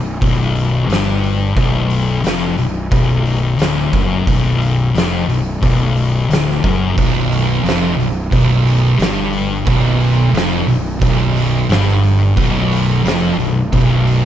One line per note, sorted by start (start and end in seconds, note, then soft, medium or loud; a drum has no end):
0.00 0.19 B0 medium
0.00 0.15 B1 medium
0.21 0.85 B0 medium
0.21 0.87 B1 medium
0.21 kick loud
0.21 open hi-hat medium
0.56 open hi-hat medium
0.87 1.52 G1 medium
0.87 1.55 G2 medium
0.87 open hi-hat medium
0.93 snare loud
1.24 open hi-hat medium
1.56 2.20 B0 loud
1.56 2.23 B1 loud
1.56 kick loud
1.56 open hi-hat medium
1.90 open hi-hat medium
2.24 2.56 F1 medium
2.24 2.57 F2 loud
2.24 snare loud
2.24 open hi-hat medium
2.58 2.90 B0 medium
2.58 2.85 B1 medium
2.58 open hi-hat medium
2.91 3.55 B0 medium
2.91 3.58 B1 loud
2.91 kick loud
2.91 open hi-hat medium
3.26 open hi-hat medium
3.59 3.91 D1 medium
3.59 3.92 D2 loud
3.59 snare loud
3.59 open hi-hat medium
3.92 4.24 F#1 medium
3.92 4.26 F#2 medium
3.92 kick loud
3.92 open hi-hat medium
4.27 4.90 B0 medium
4.27 4.93 B1 medium
4.27 kick loud
4.27 open hi-hat medium
4.62 open hi-hat medium
4.94 5.26 F1 medium
4.94 5.27 F2 loud
4.94 snare loud
4.94 open hi-hat medium
5.28 5.59 B0 medium
5.28 5.55 B1 medium
5.28 open hi-hat medium
5.61 6.26 B0 medium
5.61 6.28 B1 loud
5.61 kick loud
5.61 open hi-hat medium
5.96 open hi-hat medium
6.29 6.60 D1 medium
6.29 6.62 D2 medium
6.29 open hi-hat medium
6.33 snare loud
6.50 snare soft
6.64 6.95 F#1 medium
6.64 6.96 F#2 medium
6.64 kick loud
6.64 open hi-hat medium
6.98 7.61 B0 medium
6.98 7.64 B1 medium
6.98 kick loud
6.98 open hi-hat medium
7.32 open hi-hat medium
7.63 7.95 F1 medium
7.63 7.97 F2 loud
7.63 open hi-hat medium
7.69 snare loud
7.97 8.30 B0 medium
7.97 8.25 B1 medium
7.97 open hi-hat medium
8.31 8.96 B0 medium
8.31 8.98 B1 medium
8.31 kick loud
8.31 open hi-hat medium
8.66 open hi-hat medium
8.99 9.63 G1 medium
8.99 9.66 G2 medium
8.99 snare loud
8.99 open hi-hat medium
9.33 open hi-hat soft
9.67 10.31 B0 medium
9.67 10.34 B1 medium
9.67 kick loud
9.67 open hi-hat medium
10.00 open hi-hat medium
10.32 10.65 F1 medium
10.32 10.67 F2 medium
10.32 open hi-hat medium
10.37 snare loud
10.67 10.99 B0 medium
10.67 10.96 B1 medium
10.67 open hi-hat soft
11.01 11.66 B0 medium
11.01 11.70 B1 loud
11.01 kick loud
11.01 open hi-hat medium
11.36 open hi-hat soft
11.69 12.33 G1 medium
11.69 12.36 G2 medium
11.69 snare loud
11.69 open hi-hat medium
11.89 snare soft
12.04 open hi-hat soft
12.36 13.01 B0 medium
12.36 13.04 B1 loud
12.36 kick loud
12.36 open hi-hat medium
12.72 open hi-hat medium
13.04 13.36 F1 medium
13.04 13.38 F2 loud
13.04 snare loud
13.04 open hi-hat medium
13.37 13.69 B0 medium
13.37 13.66 B1 medium
13.37 open hi-hat medium
13.72 14.25 B0 medium
13.72 14.25 B1 loud
13.72 kick loud
13.72 open hi-hat medium
14.07 open hi-hat medium